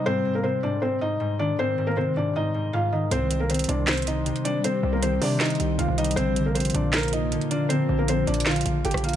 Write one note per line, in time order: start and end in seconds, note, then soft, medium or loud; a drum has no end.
0.00 0.11 C3 medium
0.00 0.11 G3 medium
0.06 0.24 G#2 medium
0.06 0.33 C4 medium
0.06 0.33 C5 loud
0.25 0.49 G#2 medium
0.35 0.43 A#3 medium
0.35 0.43 A#4 medium
0.43 0.68 C3 medium
0.43 0.60 C4 medium
0.43 0.60 C5 medium
0.63 0.81 G#2 medium
0.63 0.80 D4 medium
0.63 0.79 D5 medium
0.82 1.00 G#2 medium
0.82 0.99 C4 medium
0.82 0.98 C5 medium
1.01 1.19 G#2 medium
1.01 1.38 D#4 medium
1.01 1.37 D#5 medium
1.20 1.57 G#2 medium
1.39 2.02 D#3 medium
1.39 1.56 D4 medium
1.39 1.56 D5 medium
1.59 1.77 G#2 medium
1.59 1.86 C4 medium
1.59 1.86 C5 medium
1.78 2.02 G#2 medium
1.87 1.96 A#3 medium
1.87 1.95 A#4 medium
1.96 2.21 C3 medium
1.96 2.14 C4 medium
1.96 2.13 C5 medium
2.16 2.34 G#2 medium
2.16 2.33 D4 medium
2.16 2.33 D5 medium
2.35 2.53 G#2 medium
2.35 2.72 D#4 medium
2.35 2.71 D#5 medium
2.54 2.72 G#2 medium
2.73 3.16 G#2 loud
2.73 2.90 F4 medium
2.73 2.90 F5 medium
2.92 3.16 D#3 medium
2.92 3.09 D#4 medium
2.92 3.09 D#5 medium
3.11 3.66 C2 loud
3.11 3.29 C3 medium
3.11 6.14 D#3 medium
3.11 6.14 G3 medium
3.11 6.14 C4 medium
3.11 3.39 C4 medium
3.11 6.14 G4 medium
3.11 3.39 C5 loud
3.11 closed hi-hat medium
3.31 3.55 C3 medium
3.31 closed hi-hat medium
3.40 3.49 A#3 medium
3.40 3.48 A#4 medium
3.50 3.74 D#3 medium
3.50 3.67 C4 medium
3.50 3.66 C5 medium
3.50 closed hi-hat medium
3.54 closed hi-hat medium
3.59 closed hi-hat medium
3.64 closed hi-hat medium
3.69 4.33 C2 loud
3.69 3.86 C3 medium
3.69 3.85 D4 medium
3.69 3.85 D5 medium
3.69 closed hi-hat medium
3.87 4.06 C3 medium
3.87 4.05 C4 medium
3.87 4.04 C5 medium
3.87 snare loud
3.87 clap medium
3.87 closed hi-hat medium
3.93 closed hi-hat medium
3.97 closed hi-hat medium
4.02 closed hi-hat medium
4.07 4.25 C3 medium
4.07 4.43 D#4 medium
4.07 4.43 D#5 medium
4.07 closed hi-hat medium
4.26 4.63 C3 medium
4.26 closed hi-hat medium
4.36 closed hi-hat soft
4.45 5.08 G3 medium
4.45 4.62 D4 medium
4.45 4.61 D5 medium
4.45 closed hi-hat medium
4.64 4.82 C3 medium
4.64 4.92 C4 medium
4.64 4.91 C5 medium
4.64 closed hi-hat medium
4.83 5.20 C2 loud
4.83 5.08 C3 medium
4.93 5.01 A#3 medium
4.93 5.01 A#4 medium
5.02 5.27 D#3 medium
5.02 5.19 C4 medium
5.02 5.19 C5 medium
5.02 closed hi-hat medium
5.22 5.58 C3 loud
5.22 5.39 C3 medium
5.22 5.39 D4 medium
5.22 5.38 D5 medium
5.22 open hi-hat medium
5.40 5.58 C3 medium
5.40 5.77 D#4 medium
5.40 5.77 D#5 medium
5.40 snare loud
5.40 clap medium
5.40 closed hi-hat medium
5.45 closed hi-hat medium
5.50 closed hi-hat medium
5.55 closed hi-hat soft
5.60 5.78 C2 loud
5.60 5.78 C3 medium
5.60 closed hi-hat medium
5.79 5.88 C2 loud
5.79 6.22 C3 medium
5.79 5.96 F4 medium
5.79 5.95 F5 medium
5.79 closed hi-hat medium
5.88 6.16 C2 loud
5.98 6.22 G3 medium
5.98 6.15 D#4 medium
5.98 6.14 D#5 medium
5.98 closed hi-hat medium
6.04 closed hi-hat medium
6.11 closed hi-hat medium
6.16 6.72 A#1 loud
6.16 9.16 A#2 medium
6.16 6.35 D3 medium
6.16 9.16 F3 medium
6.16 9.16 A#3 medium
6.16 6.44 C4 medium
6.16 9.16 F4 medium
6.16 6.44 C5 loud
6.16 closed hi-hat medium
6.36 6.80 D3 medium
6.36 closed hi-hat medium
6.46 6.54 A#3 medium
6.46 6.54 A#4 medium
6.55 7.37 F3 medium
6.55 6.72 C4 medium
6.55 6.71 C5 medium
6.55 closed hi-hat medium
6.60 closed hi-hat medium
6.65 closed hi-hat medium
6.70 closed hi-hat medium
6.74 7.39 A#1 loud
6.74 7.37 A#2 medium
6.74 6.91 D4 medium
6.74 6.91 D5 medium
6.74 closed hi-hat medium
6.93 7.11 A#3 medium
6.93 7.10 A#4 medium
6.93 snare loud
6.93 clap medium
6.93 closed hi-hat medium
6.98 closed hi-hat medium
7.03 closed hi-hat medium
7.08 closed hi-hat medium
7.13 7.49 D#4 medium
7.13 7.49 D#5 medium
7.13 closed hi-hat medium
7.32 7.69 D3 loud
7.32 closed hi-hat medium
7.41 closed hi-hat soft
7.51 9.03 A#3 medium
7.51 7.68 D4 medium
7.51 7.67 D5 medium
7.51 closed hi-hat medium
7.69 7.88 D3 medium
7.69 7.97 C4 medium
7.69 7.96 C5 medium
7.69 closed hi-hat medium
7.89 8.26 A#1 loud
7.89 8.26 D3 medium
7.99 8.07 A#3 medium
7.99 8.07 A#4 medium
8.08 8.32 F3 medium
8.08 8.25 C4 medium
8.08 8.25 C5 medium
8.08 closed hi-hat medium
8.27 8.64 A#1 loud
8.27 8.45 D3 medium
8.27 8.44 D4 medium
8.27 8.43 D5 medium
8.27 closed hi-hat soft
8.34 closed hi-hat medium
8.40 closed hi-hat medium
8.46 8.65 D3 medium
8.46 8.83 F4 medium
8.46 8.82 F5 medium
8.46 snare loud
8.46 clap medium
8.46 closed hi-hat soft
8.51 closed hi-hat medium
8.56 closed hi-hat medium
8.61 closed hi-hat medium
8.66 8.84 A#1 loud
8.66 8.84 D3 medium
8.66 closed hi-hat medium
8.85 8.94 G#1 loud
8.85 9.16 D3 medium
8.85 9.01 G4 medium
8.85 9.01 G5 medium
8.85 closed hi-hat medium
8.91 9.16 A#1 loud
8.91 cross-stick medium
8.91 closed hi-hat medium
8.97 closed hi-hat medium
9.04 9.16 A#3 medium
9.04 9.16 F4 medium
9.04 9.16 F5 medium
9.04 closed hi-hat soft
9.09 closed hi-hat medium